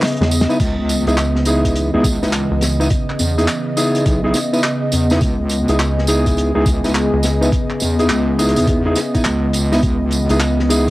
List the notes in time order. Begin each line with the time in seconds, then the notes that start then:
Already playing: C#3 B3 G#4 D#5
0.02 snare, clap, closed hi-hat, tambourine
0.07 closed hi-hat
0.12 closed hi-hat
0.17 closed hi-hat
0.21 E2, snare, closed hi-hat
0.24 closed hi-hat
0.27 closed hi-hat
0.29 closed hi-hat, tambourine
0.32 closed hi-hat
0.41 snare
0.49 B3 D#4 E4 B4, tambourine
0.60 C#2 E3, kick, closed hi-hat, tambourine, crash
0.89 closed hi-hat, tambourine
1.07 C#2 B3 D#4 E4 G#4, closed hi-hat, tambourine
1.18 clap, closed hi-hat, tambourine
1.36 snare
1.45 B3 D#4 E4 G#4, closed hi-hat, tambourine
1.65 kick, closed hi-hat, tambourine
1.76 closed hi-hat, tambourine
1.94 C#2 B3 D#4 E4 G#4
2.04 kick, closed hi-hat, tambourine
2.22 C#2 B3 D#4 E4 B4, snare, tambourine
2.32 clap, closed hi-hat, tambourine
2.51 C#2
2.61 snare, closed hi-hat, tambourine
2.80 B3 D#4 E4 B4, tambourine
2.90 kick, closed hi-hat, tambourine
3.10 clap
3.19 E2, closed hi-hat, tambourine
3.38 B3 D#4 E4 G#4, closed hi-hat, tambourine
3.47 clap, closed hi-hat, tambourine
3.77 B3 D#4 E4 G#4, closed hi-hat, tambourine
3.95 closed hi-hat, tambourine
4.06 B1, kick, closed hi-hat, tambourine
4.24 B3 D#4 E4 G#4
4.34 snare, closed hi-hat, tambourine
4.53 B3 D#4 E4 B4, tambourine
4.63 clap, closed hi-hat, tambourine
4.92 E2, closed hi-hat, tambourine
5.10 B3 D#4 E4 B4, snare, tambourine
5.21 C#2 G#4, kick, closed hi-hat, tambourine
5.49 closed hi-hat, tambourine
5.68 C#2 B3 D#4 E4 G#4, closed hi-hat, tambourine
5.79 clap, closed hi-hat, tambourine
5.99 snare
6.07 B3 D#4 E4 G#4, closed hi-hat, tambourine
6.26 kick, closed hi-hat, tambourine
6.37 closed hi-hat, tambourine
6.55 C#2 B3 D#4 E4 G#4
6.66 kick, closed hi-hat, tambourine
6.84 C#2 B3 D#4 E4 B4, snare, tambourine
6.95 clap, closed hi-hat, tambourine
7.13 C#2
7.23 snare, closed hi-hat, tambourine
7.41 B3 D#4 E4 B4, tambourine
7.52 kick, closed hi-hat, tambourine
7.70 clap
7.80 E2, closed hi-hat, tambourine
7.99 B3 D#4 E4 G#4, closed hi-hat, tambourine
8.09 C#2, clap, closed hi-hat, tambourine
8.38 B3 D#4 E4 G#4, closed hi-hat, tambourine
8.49 closed hi-hat
8.56 E2, closed hi-hat, tambourine
8.58 closed hi-hat
8.67 kick, closed hi-hat, tambourine
8.85 B3 D#4 E4 G#4
8.95 snare, closed hi-hat, tambourine
9.14 B3 D#4 E4 B4, kick, closed hi-hat, tambourine
9.25 C#2, clap, closed hi-hat, tambourine
9.53 closed hi-hat, tambourine
9.72 B3 D#4 E4 B4, snare, tambourine
9.83 C#2 E3, kick, closed hi-hat, tambourine
10.11 closed hi-hat, tambourine
10.29 C#2 B3 D#4 E4 G#4, closed hi-hat, tambourine
10.40 clap, closed hi-hat, tambourine
10.59 snare
10.69 B3 D#4 E4 G#4, closed hi-hat, tambourine